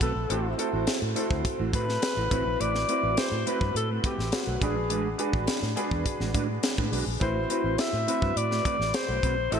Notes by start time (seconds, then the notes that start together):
Already playing: C4 E4 F#4 B4
0.01 B1 A3 C4 F#4 A4 B4, kick, closed hi-hat
0.15 A#1, muted clean electric guitar stroke
0.29 A1 A3 C4 E4 F#4 A4 C5, closed hi-hat
0.58 A3 C4 E4 F#4 A4 C5, closed hi-hat
0.72 A1 A3 E4 F#4 C5
0.87 muted fingered electric bass stroke, snare, closed hi-hat
1.02 A2, muted clean electric guitar stroke
1.15 A3 C4 E4 F#4 A4 C5, closed hi-hat
1.30 D2 A3 E4 F#4 C5, kick
1.45 kick, closed hi-hat
1.58 A1 A3 E4 F#4 C5
1.73 A2 A3 E4 F#4 B4 C5, kick, closed hi-hat
1.87 muted clean electric guitar stroke, snare
2.02 muted clean electric guitar stroke, snare, closed hi-hat
2.17 A1 A3 E4 F#4 C5
2.30 A1 A3 C4 E4 F#4 B4, kick, closed hi-hat
2.45 A#1, muted clean electric guitar stroke
2.60 A1 A3 C4 F#4 B4 D5, closed hi-hat
2.75 snare
2.88 A3 C4 E4 F#4 B4, closed hi-hat
3.03 A1 A3 C4 F#4 B4
3.17 C5, muted clean electric guitar stroke, snare, closed hi-hat
3.32 A2, muted clean electric guitar stroke
3.46 A3 C4 E4 F#4 B4, closed hi-hat
3.60 G2 A3 C4 F#4 B4, kick
3.75 A2 A4, muted clean electric guitar stroke, closed hi-hat
3.89 A3 C4 F#4 B4
4.03 A3 C4 F#4 G4 B4, kick, closed hi-hat
4.18 A1, muted clean electric guitar stroke, snare
4.32 F#4, muted clean electric guitar stroke, snare, closed hi-hat
4.47 B1 A3 C4 F#4 B4
4.61 A1 G#3 D4 F#4 G#4 B4, kick, closed hi-hat
4.76 A#1, muted clean electric guitar stroke
4.90 A1 G#3 D4 F#4 B4, closed hi-hat
5.18 G#3 D4 F#4 G#4 B4, closed hi-hat
5.33 A1 G#3 D4 F#4 B4, kick
5.47 muted clean electric guitar stroke, muted fingered electric bass stroke, snare, closed hi-hat
5.62 A2, muted clean electric guitar stroke, snare
5.76 G#3 D4 F#4 G#4 B4, closed hi-hat
5.91 E2 G#3 D4 F#4 B4, kick
6.06 muted clean electric guitar stroke, kick, closed hi-hat
6.20 A1 G#3 D4 F#4 B4, snare
6.34 A2 G#3 D4 F#4 B4, kick, closed hi-hat
6.49 muted clean electric guitar stroke
6.63 muted clean electric guitar stroke, snare, closed hi-hat
6.77 A2 G#3 D4 F#4 B4, kick
6.92 B1 G#3 D4 F#4 B4, open hi-hat
7.06 A#1, muted clean electric guitar stroke
7.20 A1 A3 C4 E4 F#4 B4 C5, kick, closed hi-hat
7.49 A3 C4 E4 F#4 B4, closed hi-hat
7.64 A1 A3 C4 F#4 B4
7.78 E5, muted clean electric guitar stroke, snare, closed hi-hat
7.92 A2, muted clean electric guitar stroke
8.07 A3 C4 E4 F#4 B4, closed hi-hat
8.21 G2 A3 C4 F#4 B4, kick
8.36 A2 D5, muted clean electric guitar stroke, closed hi-hat
8.50 A3 C4 F#4 B4, snare
8.65 A3 C4 F#4 B4, kick, closed hi-hat
8.79 A1, muted clean electric guitar stroke, snare
8.94 C5, muted clean electric guitar stroke, snare, closed hi-hat
9.08 B1 A3 C4 F#4 B4
9.22 B1 A3 C4 F#4 B4, kick, closed hi-hat
9.38 A#1
9.51 A1 A3 C4 E4 F#4 A4 C5 E5, closed hi-hat